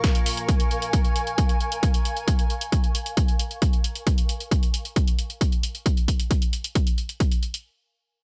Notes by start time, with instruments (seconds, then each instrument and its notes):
Already playing: synth drone A#2 F3, ambient pad A#4 F5 G#5 C#6
0.04 kick, snare, closed hi-hat
0.15 closed hi-hat
0.26 closed hi-hat, open hi-hat
0.37 closed hi-hat
0.49 kick, closed hi-hat
0.60 closed hi-hat
0.71 closed hi-hat
0.82 closed hi-hat
0.93 kick, closed hi-hat
1.05 closed hi-hat
1.16 closed hi-hat
1.27 closed hi-hat
1.38 kick, closed hi-hat
1.49 closed hi-hat
1.60 closed hi-hat
1.72 closed hi-hat
1.83 kick, closed hi-hat
1.94 closed hi-hat
2.05 closed hi-hat
2.17 closed hi-hat
2.28 kick, closed hi-hat
2.39 closed hi-hat
2.50 closed hi-hat
2.61 closed hi-hat
2.72 kick, closed hi-hat
2.84 closed hi-hat
2.95 closed hi-hat
3.06 closed hi-hat
3.17 kick, closed hi-hat
3.28 closed hi-hat
3.39 closed hi-hat
3.51 closed hi-hat
3.62 kick, closed hi-hat
3.73 closed hi-hat
3.84 closed hi-hat
3.96 closed hi-hat
4.07 kick, closed hi-hat
4.18 closed hi-hat
4.29 closed hi-hat
4.40 closed hi-hat
4.51 kick, closed hi-hat
4.63 closed hi-hat
4.74 closed hi-hat
4.85 closed hi-hat
4.96 kick, closed hi-hat
5.08 closed hi-hat
5.19 closed hi-hat
5.30 closed hi-hat
5.41 kick, closed hi-hat
5.52 closed hi-hat
5.63 closed hi-hat
5.75 closed hi-hat
5.86 kick, closed hi-hat
5.97 closed hi-hat
6.08 kick, closed hi-hat
6.20 closed hi-hat
6.31 kick, closed hi-hat
6.42 closed hi-hat
6.53 closed hi-hat
6.64 closed hi-hat
6.75 kick, closed hi-hat
6.87 closed hi-hat
6.98 closed hi-hat
7.09 closed hi-hat
7.20 kick, closed hi-hat
7.32 closed hi-hat
7.43 closed hi-hat
7.54 closed hi-hat